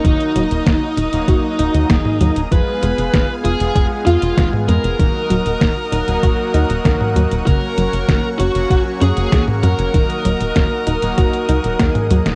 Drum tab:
HH |xxxxx-xxx-xxx-xx|x-xxx-xxx-xxx-xx|x-xxx-xxx-xxx-xx|x-xxx-xxx-xxx-xx|
SD |----o-------o---|----o-------o---|----o-------o---|----o-------o---|
T2 |-------------o--|-------------o--|-------------o--|-------------o--|
BD |o---o---o---o---|o---o---o---o---|o---o---o---o---|o---o---o---o---|

HH |xxxxx-xxxxxxxxxx|
SD |----o-------o--o|
T2 |-------------o-o|
BD |o---o---o---o---|